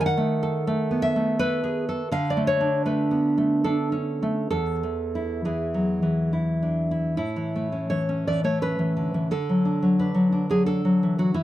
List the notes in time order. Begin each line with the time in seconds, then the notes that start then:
Already playing: D#3
0.01 G#5
0.06 F#5
0.17 A3
0.43 A4
0.67 A3
0.91 B3
1.02 E5
1.16 A3
1.39 A4 B4
1.64 G#4
1.89 A4
2.12 D3 F5
2.30 D5
2.37 A3
2.47 C#5
2.61 D4
2.86 A3 B4
3.11 B3
3.38 A3
3.64 D4 A4
3.92 C#4
4.23 A3
4.50 E2 A4
4.83 E3
5.15 E4
5.45 E3 G#4
5.74 F#3
6.03 E3
6.33 E4
6.63 D4
6.91 E4
7.17 A2 E4
7.36 E3
7.56 A3
7.72 C#4
7.90 E3 C#5
8.09 C#4
8.27 E3 D5
8.44 A3 C#5
8.62 C#4 B4
8.79 E3
8.97 D3
9.14 E3
9.31 D3 A4
9.49 F#3
9.65 D4
9.82 F#3
9.99 D4 B4
10.14 F#3
10.32 D4
10.50 F#3 G#4
10.66 D4 A4
10.85 F#3
11.03 E3
11.18 F#3 F#4
11.34 E3 E4